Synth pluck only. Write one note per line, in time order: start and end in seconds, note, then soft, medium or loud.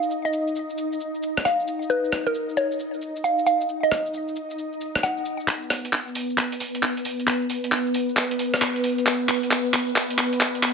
0.25 0.44 D#5 medium
1.45 1.73 F5 medium
1.90 2.11 B4 medium
2.27 2.46 A#4 medium
2.57 2.78 C#5 medium
3.24 3.40 F5 medium
3.46 3.67 F5 medium
3.83 4.03 D#5 medium
5.03 5.31 F#5 medium